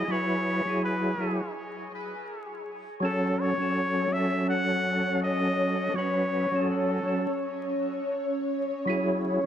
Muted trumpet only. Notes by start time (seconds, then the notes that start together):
Already playing: D#5
0.11 C#5
0.84 B4
3.03 A4
3.40 C#5
4.13 E5
4.49 F#5
5.22 D#5
5.96 C#5
6.68 A4